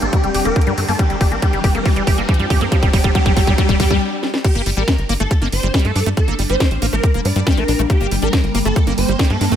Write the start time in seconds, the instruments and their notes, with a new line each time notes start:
Already playing: ambient pad G3 C4, wobble bass D4, analog synth pad D4 G4 D5 G5, riser
0.02 analog synth bass A1, acid bass A#3, digital synth lead A4, closed hi-hat
0.13 acid bass G3, digital synth lead G4, kick, closed hi-hat
0.24 analog synth bass F1, acid bass G3, closed hi-hat
0.34 analog synth bass F1, acid bass G4, open hi-hat
0.45 analog synth bass F1, acid bass A#3, digital synth lead A#4, closed hi-hat
0.56 acid bass G4, kick, closed hi-hat
0.61 closed hi-hat
0.67 analog synth bass G2, acid bass G3, closed hi-hat
0.78 analog synth bass G2, acid bass A3, open hi-hat
0.88 analog synth bass G2, acid bass A#3, digital synth lead A4, open hi-hat
0.99 acid bass G3, digital synth lead G4, kick, closed hi-hat
1.10 analog synth bass G1, acid bass G3, closed hi-hat
1.21 analog synth bass G1, acid bass G4, kick, open hi-hat
1.32 analog synth bass A1, acid bass A#3, digital synth lead A#4, closed hi-hat
1.42 acid bass G3, digital synth lead G4, kick, closed hi-hat
1.53 analog synth bass G1, acid bass G3, closed hi-hat
1.64 analog synth bass G1, acid bass G4, kick, open hi-hat
1.75 analog synth bass G1, acid bass A#3, digital synth lead A#4, closed hi-hat
1.86 acid bass G3, digital synth lead G4, kick, open hi-hat
1.96 analog synth bass G1, acid bass G3, closed hi-hat
2.07 analog synth bass G1, acid bass G4, kick, open hi-hat
2.18 analog synth bass G1, acid bass A#3, digital synth lead A#4, closed hi-hat
2.29 acid bass G3, digital synth lead G4, kick, closed hi-hat
2.34 closed hi-hat
2.39 analog synth bass G2, acid bass G3, closed hi-hat
2.50 analog synth bass G2, acid bass G4, kick, open hi-hat
2.61 analog synth bass G2, acid bass A#3, digital synth lead A#4, closed hi-hat
2.72 acid bass G3, digital synth lead G4, kick, closed hi-hat
2.83 analog synth bass G1, acid bass G3, kick, closed hi-hat
2.93 analog synth bass G1, acid bass G3, digital synth lead G4, kick, open hi-hat
3.04 analog synth bass G1, acid bass G3, kick, closed hi-hat
3.15 acid bass G3, digital synth lead G4, kick, closed hi-hat
3.26 analog synth bass A1, acid bass G3, kick, closed hi-hat
3.37 analog synth bass A1, acid bass G3, digital synth lead G4, kick, open hi-hat
3.47 analog synth bass A1, acid bass G3, kick, closed hi-hat
3.58 acid bass G3, digital synth lead G4, kick, closed hi-hat
3.69 analog synth bass F1, acid bass G3, kick, closed hi-hat
3.80 analog synth bass G2, acid bass G3, digital synth lead G4, kick, open hi-hat
3.91 analog synth bass G2, acid bass G3, kick
4.23 snare
4.34 snare
4.44 acid bass G3, ambient pad G3 D4, digital synth lead G4, kick, closed hi-hat, crash
4.55 analog synth bass G1, acid bass A#3, closed hi-hat
4.66 analog synth bass G1, acid bass G3, open hi-hat
4.77 analog synth bass A1, acid bass G3, digital synth lead A#4, closed hi-hat
4.88 acid bass G3, kick, snare, closed hi-hat
4.98 analog synth bass G1, closed hi-hat
5.09 analog synth bass G1, acid bass A#3, open hi-hat
5.20 analog synth bass G1, acid bass A3, digital synth lead A4, closed hi-hat
5.31 acid bass G4, kick, closed hi-hat
5.42 analog synth bass G1, acid bass A#3, snare, closed hi-hat
5.52 analog synth bass G1, digital synth lead C5, open hi-hat
5.63 analog synth bass G1, acid bass G3, closed hi-hat
5.74 acid bass G3, kick, snare, closed hi-hat
5.79 closed hi-hat
5.85 analog synth bass G2, acid bass A3, digital synth lead A4, closed hi-hat
5.96 analog synth bass G2, acid bass D4, open hi-hat
6.06 analog synth bass G2, acid bass A3, closed hi-hat
6.17 acid bass G3, digital synth lead A4, kick, closed hi-hat
6.28 analog synth bass G1, acid bass A#3, closed hi-hat
6.39 analog synth bass G1, acid bass G3, open hi-hat
6.50 analog synth bass G1, acid bass G3, digital synth lead C5, closed hi-hat
6.60 acid bass G3, wobble bass C4, kick, snare, closed hi-hat
6.71 analog synth bass A1, wobble bass C4, closed hi-hat
6.82 analog synth bass A1, acid bass A#3, open hi-hat
6.93 analog synth bass A1, acid bass A3, digital synth lead A#4, closed hi-hat
7.04 acid bass G4, kick, closed hi-hat
7.14 analog synth bass F1, acid bass A#3, closed hi-hat
7.25 analog synth bass G2, digital synth lead D5, open hi-hat
7.36 analog synth bass G2, acid bass G3, closed hi-hat
7.47 acid bass G3, kick, snare, closed hi-hat
7.52 closed hi-hat
7.57 analog synth bass A#1, acid bass A3, digital synth lead A#4, closed hi-hat
7.68 analog synth bass A#1, acid bass D4, open hi-hat
7.79 analog synth bass A#1, acid bass A3, wobble bass A#3, closed hi-hat
7.90 acid bass G3, ambient pad A#3, wobble bass A#3, digital synth lead G4, kick, closed hi-hat
8.01 analog synth bass G1, acid bass A#3, closed hi-hat
8.11 analog synth bass G1, acid bass G3, open hi-hat
8.22 analog synth bass A1, acid bass G3, digital synth lead A#4, closed hi-hat
8.33 acid bass G3, kick, snare, closed hi-hat
8.44 analog synth bass G1, closed hi-hat
8.55 analog synth bass G1, acid bass A#3, open hi-hat
8.65 analog synth bass G1, acid bass A3, digital synth lead A4, closed hi-hat
8.76 acid bass G4, kick, closed hi-hat
8.87 analog synth bass G1, acid bass A#3, snare, closed hi-hat
8.98 analog synth bass G1, digital synth lead C5, open hi-hat
9.09 analog synth bass G1, acid bass G3, closed hi-hat
9.19 acid bass G3, kick, snare, closed hi-hat
9.25 closed hi-hat
9.30 analog synth bass G2, acid bass A3, digital synth lead A4, closed hi-hat
9.41 analog synth bass G2, acid bass D4, open hi-hat
9.52 analog synth bass G2, acid bass A3, closed hi-hat